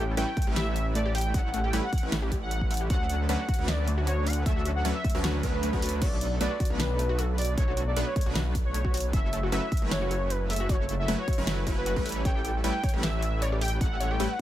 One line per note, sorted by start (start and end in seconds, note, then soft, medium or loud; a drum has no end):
0.00 0.16 A1 loud
0.00 0.15 G3 medium
0.00 0.15 A3 medium
0.00 0.15 C#4 medium
0.00 0.15 E4 medium
0.00 0.15 A4 medium
0.17 0.25 A1 medium
0.17 0.27 G3 medium
0.17 0.27 A3 medium
0.17 0.27 C#4 medium
0.17 0.27 E4 medium
0.17 0.27 B4 medium
0.17 0.47 G5 loud
0.17 closed hi-hat medium
0.37 0.44 A3 medium
0.37 kick loud
0.37 closed hi-hat soft
0.42 closed hi-hat medium
0.47 1.32 A1 loud
0.47 1.32 G3 loud
0.47 1.32 A3 medium
0.47 1.32 C#4 medium
0.47 1.32 E4 medium
0.47 0.53 G4 medium
0.47 1.32 B4 loud
0.56 0.63 G4 medium
0.56 0.86 E5 loud
0.56 snare loud
0.56 closed hi-hat medium
0.76 closed hi-hat medium
0.95 1.02 A3 medium
0.95 1.10 D5 medium
0.95 closed hi-hat medium
1.06 1.12 G4 medium
1.15 1.22 G4 medium
1.15 1.36 G5 medium
1.15 closed hi-hat medium
1.15 open hi-hat medium
1.21 closed hi-hat medium
1.34 1.71 A1 medium
1.34 1.71 G3 medium
1.34 1.71 A3 medium
1.34 1.71 C#4 medium
1.34 1.71 E4 medium
1.34 1.71 A4 medium
1.34 1.66 F#5 loud
1.34 kick loud
1.34 closed hi-hat medium
1.54 1.60 A3 medium
1.54 closed hi-hat medium
1.64 1.70 G4 medium
1.64 1.79 G5 medium
1.73 1.80 A1 loud
1.73 1.83 G3 medium
1.73 1.82 A3 medium
1.73 1.82 C#4 medium
1.73 1.82 E4 medium
1.73 1.80 G4 medium
1.73 1.83 B4 medium
1.73 closed hi-hat medium
1.84 2.05 F#5 loud
1.93 kick loud
1.93 closed hi-hat soft
1.98 closed hi-hat medium
2.03 2.88 A1 loud
2.03 2.88 G3 loud
2.03 2.88 A3 medium
2.03 2.88 C#4 medium
2.03 2.88 E4 medium
2.03 2.88 B4 loud
2.12 2.19 A3 medium
2.12 snare loud
2.12 closed hi-hat medium
2.22 2.28 G4 medium
2.31 2.38 G4 medium
2.31 kick medium
2.31 closed hi-hat medium
2.42 2.83 F#5 loud
2.51 closed hi-hat medium
2.61 kick medium
2.71 2.77 A3 medium
2.71 closed hi-hat medium
2.71 open hi-hat medium
2.77 2.87 G4 medium
2.77 closed hi-hat medium
2.90 3.27 D2 medium
2.90 3.27 F#3 medium
2.90 3.27 A3 medium
2.90 3.27 C#4 medium
2.90 3.27 D4 medium
2.90 2.97 F#4 medium
2.90 3.27 A4 medium
2.90 3.20 F#5 loud
2.90 kick loud
2.90 closed hi-hat medium
3.10 closed hi-hat medium
3.29 3.36 D2 loud
3.29 3.38 F#3 medium
3.29 3.36 A3 medium
3.29 3.38 A3 medium
3.29 3.38 C#4 medium
3.29 3.38 D4 medium
3.29 3.38 B4 medium
3.29 3.70 F#5 loud
3.29 closed hi-hat medium
3.39 3.45 F#4 medium
3.49 3.55 F#4 medium
3.49 kick loud
3.49 closed hi-hat soft
3.54 closed hi-hat medium
3.59 4.44 D2 loud
3.59 4.44 F#3 loud
3.59 4.44 A3 medium
3.59 4.44 C#4 medium
3.59 4.44 D4 medium
3.59 4.44 B4 loud
3.68 3.98 D5 loud
3.68 snare loud
3.68 closed hi-hat medium
3.88 3.94 A3 medium
3.88 closed hi-hat medium
3.98 4.04 F#4 medium
4.07 4.14 F#4 medium
4.07 4.28 C#5 medium
4.07 closed hi-hat medium
4.26 4.41 F#5 medium
4.26 closed hi-hat medium
4.26 open hi-hat medium
4.33 closed hi-hat medium
4.46 4.83 D2 loud
4.46 4.83 F#3 medium
4.46 4.83 A3 medium
4.46 4.53 A3 medium
4.46 4.83 C#4 medium
4.46 4.83 D4 medium
4.46 4.83 A4 medium
4.46 4.68 E5 medium
4.46 kick loud
4.46 closed hi-hat medium
4.56 4.62 F#4 medium
4.65 4.72 F#4 medium
4.65 closed hi-hat medium
4.76 4.90 F#5 medium
4.85 4.92 D2 loud
4.85 4.94 F#3 medium
4.85 4.94 A3 medium
4.85 4.94 C#4 medium
4.85 4.94 D4 medium
4.85 4.94 B4 medium
4.85 closed hi-hat medium
4.95 5.17 E5 loud
5.04 5.11 A3 medium
5.04 kick loud
5.04 closed hi-hat soft
5.10 closed hi-hat medium
5.15 5.41 D2 loud
5.15 5.42 F#3 loud
5.15 5.42 A3 medium
5.15 5.42 C#4 medium
5.15 5.42 D4 medium
5.15 5.21 F#4 medium
5.15 5.42 B4 loud
5.24 5.31 F#4 medium
5.24 snare loud
5.24 closed hi-hat medium
5.24 swell medium
5.43 5.71 D2 loud
5.43 5.71 F#3 loud
5.43 5.71 A3 medium
5.43 5.71 C#4 medium
5.43 5.71 D4 medium
5.43 5.71 B4 loud
5.43 kick medium
5.43 closed hi-hat medium
5.53 6.03 B4 loud
5.63 5.70 A3 medium
5.63 closed hi-hat medium
5.73 6.03 D2 loud
5.73 6.00 F#3 loud
5.73 6.00 A3 medium
5.73 6.00 C#4 medium
5.73 6.00 D4 medium
5.73 5.79 F#4 medium
5.73 6.00 B4 loud
5.73 kick medium
5.82 5.89 F#4 medium
5.82 closed hi-hat medium
5.82 open hi-hat medium
5.89 closed hi-hat medium
6.02 6.39 B1 loud
6.02 6.38 F#3 medium
6.02 6.38 A3 medium
6.02 6.38 D4 medium
6.02 6.09 F#4 medium
6.02 6.38 A4 medium
6.02 6.32 D5 loud
6.02 kick loud
6.02 closed hi-hat medium
6.02 crash medium
6.21 closed hi-hat medium
6.41 6.48 B1 loud
6.41 6.50 F#3 medium
6.41 6.50 A3 medium
6.41 6.47 A3 medium
6.41 6.50 B3 medium
6.41 6.50 D4 medium
6.41 6.50 B4 medium
6.41 6.71 D5 loud
6.41 closed hi-hat medium
6.51 6.57 F#4 medium
6.60 6.67 F#4 medium
6.60 kick loud
6.60 closed hi-hat medium
6.65 closed hi-hat medium
6.70 7.56 B1 loud
6.70 7.55 F#3 loud
6.70 7.55 A3 medium
6.70 7.55 B3 medium
6.70 7.55 D4 medium
6.70 7.55 B4 loud
6.80 7.20 B4 loud
6.80 snare loud
6.80 closed hi-hat medium
6.99 7.06 A3 medium
6.99 closed hi-hat medium
7.09 7.15 F#4 medium
7.18 7.25 F#4 medium
7.18 7.34 A4 medium
7.18 closed hi-hat medium
7.38 7.53 D5 medium
7.38 closed hi-hat medium
7.38 open hi-hat medium
7.45 closed hi-hat medium
7.57 7.95 B1 loud
7.57 7.94 F#3 medium
7.57 7.94 A3 medium
7.57 7.64 A3 medium
7.57 7.94 B3 medium
7.57 7.94 D4 medium
7.57 7.94 A4 medium
7.57 7.80 C#5 loud
7.57 kick loud
7.57 closed hi-hat medium
7.68 7.74 F#4 medium
7.77 7.84 F#4 medium
7.77 closed hi-hat medium
7.87 8.02 D5 medium
7.97 8.04 B1 loud
7.97 8.06 F#3 medium
7.97 8.06 A3 medium
7.97 8.06 B3 medium
7.97 8.06 D4 medium
7.97 8.06 B4 medium
7.97 closed hi-hat medium
8.06 8.29 C#5 loud
8.16 8.23 A3 medium
8.16 kick loud
8.16 closed hi-hat medium
8.21 closed hi-hat medium
8.26 9.12 B1 loud
8.26 9.11 F#3 loud
8.26 9.11 A3 medium
8.26 9.11 B3 medium
8.26 9.11 D4 medium
8.26 8.32 F#4 medium
8.26 9.11 B4 loud
8.35 8.42 F#4 medium
8.35 snare loud
8.35 closed hi-hat medium
8.55 kick medium
8.55 closed hi-hat medium
8.65 9.06 C#5 loud
8.74 8.81 A3 medium
8.74 closed hi-hat medium
8.85 8.91 F#4 medium
8.85 kick medium
8.94 9.01 F#4 medium
8.94 closed hi-hat medium
8.94 open hi-hat medium
9.00 closed hi-hat medium
9.13 9.50 F#1 loud
9.13 9.50 F#3 medium
9.13 9.50 A3 medium
9.13 9.50 C#4 medium
9.13 9.50 E4 medium
9.13 9.50 A4 medium
9.13 9.43 E5 loud
9.13 kick loud
9.13 closed hi-hat medium
9.33 9.40 A3 medium
9.33 closed hi-hat medium
9.43 9.49 F#4 medium
9.52 9.60 F#1 loud
9.52 9.61 F#3 medium
9.52 9.61 A3 medium
9.52 9.62 C#4 medium
9.52 9.61 E4 medium
9.52 9.59 F#4 medium
9.52 9.61 B4 medium
9.52 9.82 E5 loud
9.52 closed hi-hat medium
9.72 kick loud
9.72 closed hi-hat medium
9.77 closed hi-hat medium
9.82 10.67 F#1 loud
9.82 10.67 F#3 loud
9.82 10.67 A3 medium
9.82 10.67 C#4 medium
9.82 10.67 E4 medium
9.82 10.67 B4 loud
9.91 9.98 A3 medium
9.91 10.32 C#5 loud
9.91 snare loud
9.91 closed hi-hat medium
10.02 10.08 F#4 medium
10.11 10.18 F#4 medium
10.11 closed hi-hat medium
10.30 10.45 B4 medium
10.30 closed hi-hat medium
10.50 10.57 A3 medium
10.50 10.71 E5 medium
10.50 closed hi-hat medium
10.50 open hi-hat medium
10.56 10.66 F#4 medium
10.56 closed hi-hat medium
10.69 11.06 F#1 loud
10.69 11.06 F#3 medium
10.69 11.06 A3 medium
10.69 11.06 C#4 medium
10.69 11.06 E4 medium
10.69 10.76 F#4 medium
10.69 11.06 A4 medium
10.69 10.92 C#5 loud
10.69 kick loud
10.69 closed hi-hat medium
10.89 closed hi-hat medium
10.99 11.14 E5 medium
11.08 11.15 F#1 loud
11.08 11.17 F#3 medium
11.08 11.17 A3 medium
11.08 11.15 A3 medium
11.08 11.17 C#4 medium
11.08 11.17 E4 medium
11.08 11.17 B4 medium
11.08 closed hi-hat medium
11.19 11.25 F#4 medium
11.19 11.41 C#5 loud
11.28 11.35 F#4 medium
11.28 kick loud
11.28 closed hi-hat soft
11.33 closed hi-hat medium
11.38 11.65 F#1 loud
11.38 11.65 F#3 loud
11.38 11.65 A3 medium
11.38 11.65 C#4 medium
11.38 11.65 E4 medium
11.38 11.65 B4 loud
11.47 snare loud
11.47 closed hi-hat medium
11.67 11.94 F#1 loud
11.67 11.94 F#3 loud
11.67 11.94 A3 medium
11.67 11.94 C#4 medium
11.67 11.94 E4 medium
11.67 11.73 E4 loud
11.67 11.94 B4 loud
11.67 kick medium
11.67 closed hi-hat medium
11.77 12.18 B4 loud
11.86 11.96 F#4 loud
11.86 closed hi-hat medium
11.96 12.23 A1 medium
11.96 12.23 G3 loud
11.96 12.23 A3 medium
11.96 12.23 C#4 medium
11.96 12.23 E4 medium
11.96 12.23 B4 loud
11.96 kick medium
12.06 12.12 A3 medium
12.06 closed hi-hat medium
12.06 open hi-hat medium
12.12 12.24 C#5 medium
12.12 closed hi-hat medium
12.25 12.62 A1 medium
12.25 12.62 G3 medium
12.25 12.62 A3 medium
12.25 12.62 C#4 medium
12.25 12.62 E4 medium
12.25 12.62 A4 medium
12.25 12.35 C#5 loud
12.25 12.55 G5 loud
12.25 kick loud
12.25 closed hi-hat medium
12.35 12.41 G4 medium
12.45 12.51 G4 medium
12.45 closed hi-hat medium
12.64 12.71 A1 loud
12.64 12.73 G3 medium
12.64 12.73 A3 medium
12.64 12.73 C#4 medium
12.64 12.73 E4 medium
12.64 12.73 B4 medium
12.64 12.94 G5 loud
12.64 closed hi-hat medium
12.84 12.93 C#5 loud
12.84 kick loud
12.84 closed hi-hat soft
12.89 closed hi-hat medium
12.94 13.79 A1 loud
12.94 13.79 G3 loud
12.94 13.79 A3 medium
12.94 13.79 C#4 medium
12.94 13.79 E4 medium
12.94 13.00 G4 medium
12.94 13.79 B4 loud
13.03 13.10 G4 medium
13.03 13.44 E5 loud
13.03 snare loud
13.03 closed hi-hat medium
13.22 closed hi-hat medium
13.42 13.52 C#5 loud
13.42 13.57 D5 medium
13.42 closed hi-hat medium
13.52 13.58 G4 medium
13.61 13.68 G4 medium
13.61 13.77 G5 medium
13.61 closed hi-hat medium
13.61 open hi-hat medium
13.68 closed hi-hat medium
13.81 14.18 A1 loud
13.81 14.18 G3 medium
13.81 14.18 A3 medium
13.81 14.18 C#4 medium
13.81 14.18 E4 medium
13.81 14.18 A4 medium
13.81 14.12 F#5 loud
13.81 kick loud
13.81 closed hi-hat medium
14.00 14.10 C#5 loud
14.00 closed hi-hat medium
14.11 14.17 G4 medium
14.11 14.32 G5 medium
14.20 14.27 A1 loud
14.20 14.29 G3 medium
14.20 14.29 A3 medium
14.20 14.29 C#4 medium
14.20 14.29 E4 medium
14.20 14.27 G4 medium
14.20 14.29 B4 medium
14.20 closed hi-hat medium
14.30 14.41 F#5 loud